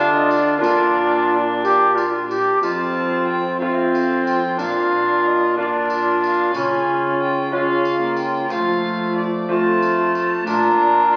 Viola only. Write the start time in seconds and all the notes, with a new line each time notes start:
Already playing: D4
0.62 D4
2.61 C4
3.61 C4
4.58 D4
5.57 D4
6.55 C#4
7.53 C#4
8.02 A#3
8.50 A3
9.50 A3
10.47 D4